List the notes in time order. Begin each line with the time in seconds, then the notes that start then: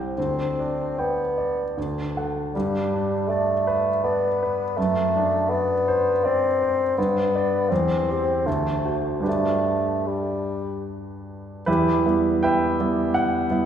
Already playing: C2 G4 G5
0.17 D2 C4
0.59 D4
0.98 B3 G5
1.38 D5
1.77 D2
2.17 A4 F#5
2.54 G2 G3
2.94 D4
3.28 A3 D5
3.67 B4
4.04 B3 D5
4.43 B4
4.77 F#2 A3
5.16 D4
5.50 B3 D5
5.88 C5
6.24 C4 D5
6.62 C5
6.98 G2 B3
7.35 B4 D5
7.69 E2 C4
8.09 G4 C5
8.46 D2 A3
8.85 F#4 C5
9.20 G2 D4 G4 B4
9.28 A3
10.07 G3
11.66 E2 E4 G4 B4
12.06 G3 B3 E4
12.43 B4 E5 G5
12.80 G3 B3 E4
13.14 F#5
13.50 G3 B3 E4